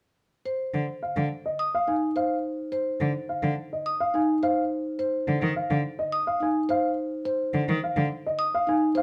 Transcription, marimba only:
X:1
M:4/4
L:1/16
Q:1/4=106
K:Fdor
V:1 name="Marimba"
z3 c z8 z E z c | z3 c z8 z E z c | z3 c z8 z E z c | z3 c z8 z E z c |]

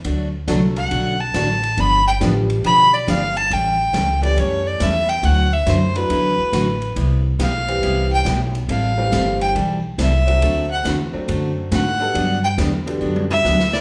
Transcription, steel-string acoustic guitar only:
X:1
M:4/4
L:1/8
Q:"Swing" 1/4=139
K:G
V:1 name="Steel-string acoustic guitar"
[D,F,A,DF] z [D,F,A,DF] z [D,F,A,DF] z [D,F,A,DF] z | [D,=F,B,DG] z [D,F,B,DG] z [D,F,B,DG] z [D,F,B,DG] z | [E,G,^CEA] z [E,G,CEA] z [E,G,CEA] z [E,G,CEA] z | [D,F,A,EF] z [D,F,A,EF] z [D,F,A,EF] z [D,F,A,EF] z |
[C,G,B,EG] z [C,G,B,EG] z [C,G,B,EG] z [C,G,B,EG] z | [E,G,CEA] z [E,G,CEA] z [E,G,CEA] z [E,G,CEA] z | [D,A,CFA] z [D,A,CFA] z [D,A,CFA] z [D,A,CFA] z | [D,F,B,DG] z [D,F,B,DG] z [D,F,B,DG] z [D,F,B,DG] z |]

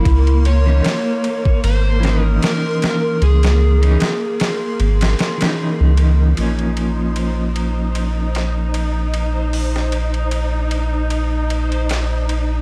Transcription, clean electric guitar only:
X:1
M:4/4
L:1/16
Q:"Swing 16ths" 1/4=76
K:Bbm
V:1 name="Clean electric guitar"
z3 [_F,DE] z6 [F,DE]6- | [_F,DE]3 [F,DE] z6 z [F,DE]4- [F,DE] | [F,B,D]16- | [F,B,D]16 |]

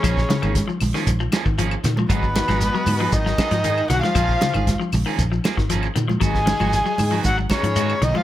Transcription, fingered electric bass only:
X:1
M:4/4
L:1/16
Q:1/4=116
K:G#dor
V:1 name="Fingered electric bass" clef=bass
A,,,2 z G,,,2 z A,,, z A,,,2 z G,,,3 A,,2 | G,,,3 G,,,2 z G,,2 G,,,2 z G,,3 B,,, z | A,,,2 z G,,,2 z A,,, z A,,,2 z G,,,3 A,,2 | G,,,3 G,,,2 z G,,2 G,,,2 z G,,3 B,,, z |]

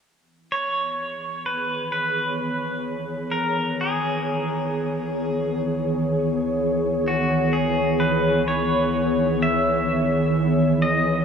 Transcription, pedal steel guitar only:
X:1
M:4/4
L:1/8
Q:1/4=64
K:C#m
V:1 name="Pedal steel guitar"
z c2 B B2 z ^A | G4 z3 F | G B c2 e3 d |]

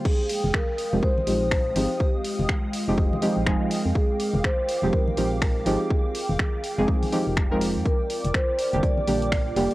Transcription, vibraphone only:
X:1
M:4/4
L:1/8
Q:"Swing 16ths" 1/4=123
K:Fdor
V:1 name="Vibraphone"
A2 B2 c4 | G2 z6 | A2 c2 B3 A- | A4- A z3 |
B2 c2 d4 |]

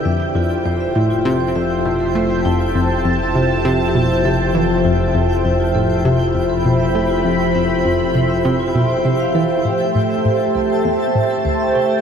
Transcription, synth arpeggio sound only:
X:1
M:4/4
L:1/16
Q:1/4=100
K:Flyd
V:1 name="Synth arpeggio sound" clef=bass
F,, z F,, z F,, z A,, z C, z F,,2 B,,2 A, z | F,, z F,, z F,, z C, z C, z B,,2 C,2 E,2 | F,, z F,, z F,, z A,, z C, z F,,2 B,,2 A, z | F,, z F,, z F,, z C, z C, z B,,2 C,2 E,2 |
[K:Am] A,, z A,, z A,, z C,, z E,, z A,,2 D,,2 C, z |]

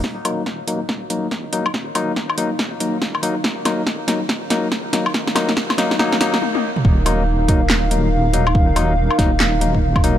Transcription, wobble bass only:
X:1
M:4/4
L:1/16
Q:"Swing 16ths" 1/4=141
K:Ebm
V:1 name="Wobble bass" clef=bass
E,,,6 E,,,8- E,,,2- | E,,,4- E,,, z E,,,8- E,,,2- | E,,,4- E,,, z E,,,4 D,,4 E,,,2- | E,,,6 E,,,4- E,,, D,, z4 |
E,,,6 E,,,8- E,,,2- | E,,,4- E,,, z E,,,8- E,,,2 |]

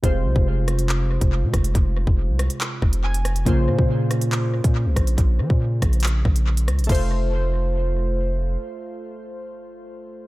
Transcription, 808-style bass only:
X:1
M:4/4
L:1/16
Q:1/4=140
K:Fm
V:1 name="808-style bass" clef=bass
F,,,2 C,, F,,,8 F,,,2 C, F,,,2 | F,,,3 F,,,2 C,,2 z3 F,,,6 | B,,,2 B,, B,,8 B,,2 C,, B,,,2 | B,,,2 F, B,,3 B,,,4 B,,,4 D,, B,,, |
F,,,16 | z16 |]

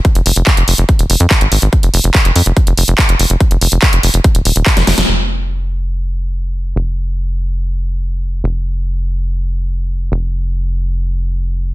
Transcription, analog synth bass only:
X:1
M:4/4
L:1/16
Q:1/4=143
K:Fm
V:1 name="Analog synth bass" clef=bass
z F,,, F,,, F,,, z F,,, F,,, F,,, z E,,, F,,, F,, z A,,, A,,, A,,, | z F,,, F,,, F,,, z F,,, F,, F,,, z F,,, F,,, F,,, z F,,, F,,, F,,, | z F,,, F,,, F,,, z F,,, F,,, F,,, z E,,, E,,, E,,, z F,,, F,,, F,,, | F,,,16 |
F,,,16 | F,,,16 | F,,,16 |]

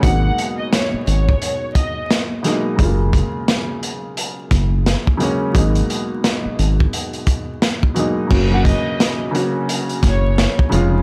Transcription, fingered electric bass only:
X:1
M:4/4
L:1/16
Q:"Swing 16ths" 1/4=87
K:F#
V:1 name="Fingered electric bass" clef=bass
G,,,2 z4 G,,,2 z8 | F,,,3 z6 z F,,,3 z3 | G,,,2 z4 G,,,2 z8 | F,,,3 z6 z F,,,3 z E,,,2 |]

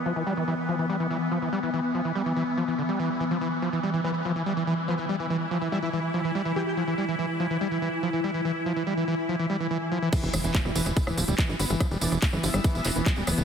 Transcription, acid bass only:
X:1
M:4/4
L:1/16
Q:1/4=143
K:Ephr
V:1 name="Acid bass" clef=bass
F, E, G, E, E, z F, E, G, E, E, z F, E, G, E, | E, z F, E, G, E, E, z F, E, D, G, E, z E, F, | E, z F, E, G, E, E, z F, E, G, E, E, z F, E, | G, E, E, z F, E, G, E, E, z F, E, G, E, E, z |
F, E, G, E, E, z F, E, G, E, E, z F, E, G, E, | E, z F, E, G, E, E, z F, E, G, E, E, z F, E, | E, E, z E, F, G, E, E, z E, F, G, E, E, z E, | F, G, E, E, z E, F, G, E, E, z E, F, G, E, E, |]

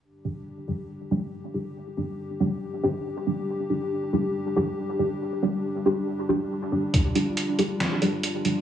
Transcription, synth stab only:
X:1
M:4/4
L:1/16
Q:"Swing 16ths" 1/4=139
K:Cm
V:1 name="Synth stab"
z2 [G,DG]2 z2 [G,DG]2 z2 [G,DG]2 z2 [G,DG] z | z2 [G,DG]2 z2 [G,DG]2 z2 [G,DG]2 z2 [G,DG] z | z2 [G,DG]2 z2 [G,DG]2 z2 [G,DG]2 z2 [G,DG] z | z2 [G,DG]2 z2 [G,DG]2 z2 [G,DG] z3 [G,DG]2 |
z2 [G,DG]2 z2 [G,DG]2 z2 [G,DG]2 z2 [G,DG] z |]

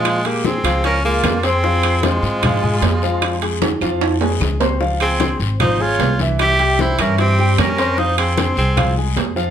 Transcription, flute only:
X:1
M:4/4
L:1/8
Q:1/4=151
K:Fm
V:1 name="Flute"
F G A2 B F2 A- | A2 F6- | F2 z6 | z A2 z c d2 z |
=e2 c B G2 B2 | c A2 A2 z3 |]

